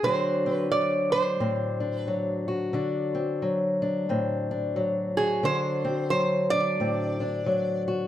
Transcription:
0.03 D3 F#3 C4 D4 F#4 C5
0.46 C4
0.53 B4
0.71 F#3 D5
1.12 D4 C5
1.40 A2 C4
1.80 D4
1.97 B4
2.08 F#3
2.48 F#4
2.73 D3 D4
3.15 C4
3.42 F#3
3.82 D4
4.09 A2 C4
4.51 D4
4.76 F#3
5.17 F#4 G#4
5.43 D3 D4 C5
5.85 C4
6.10 F#3 C5
6.50 D4 D5
6.80 A2 C4
7.20 D4
7.46 F#3
7.88 F#4

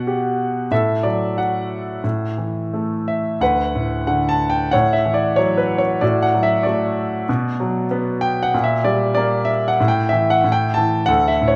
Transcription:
Already playing: B2 F#4 F#5
0.07 G4
0.71 A2 A4 E5
1.03 F#3 D5
1.37 F#4 F#5
2.04 A2
2.38 E3
2.74 A3
3.08 E5
3.41 D2 B4 F#5
3.75 A2
4.07 D3 F#5
4.29 A5
4.50 G5
4.71 A2 C#5 F#5
4.93 E5
5.05 E3
5.14 D5
5.36 F#3 C#5
5.57 B4
5.78 C#5
6.01 A2 F#4 D5
6.23 F#5
6.34 F#3
6.43 E5
6.63 A3 F#4 D5
7.29 B2
7.60 F#3
7.91 B3
8.21 G5
8.43 F#5
8.54 A#2
8.64 E5
8.84 G3 D5
9.15 A#3 D5
9.45 E5
9.68 F#5
9.80 A2
9.88 G5
10.09 E3 E5
10.30 F#5
10.44 A2
10.52 G5
10.74 E3 A5
11.06 D2 A4 F#5
11.28 E5
11.42 A2
11.48 C#5

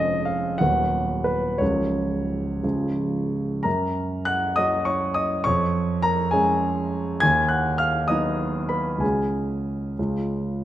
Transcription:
Already playing: F1 F2 G#3 C#4 G#4 D#5
0.25 F5
0.58 D#1 D#2 F#3 B3 B4 F#5
1.24 B4
1.58 C#1 C#2 F#3 C#4 A#4 C#5
2.63 C#1 C#2 F3 C#4 G#4
3.63 F#2 A#4 A#5
4.25 F#5 F#6
4.56 F#3 C#4 F#4 D#5 D#6
4.85 C#5 C#6
5.14 D#5 D#6
5.44 F2 C#5 C#6
6.02 A#4 A#5
6.31 G#3 C#4 G#4 G#5
7.20 D#2 G#5 G#6
7.49 F#5 F#6
7.78 F5 F6
8.08 F#3 B3 D#4 D#5 D#6
8.69 B4 B5
8.98 C#2 G#5
9.02 G#3 C#4 F#4 G#4
9.99 C#2 G#3 C#4 F4

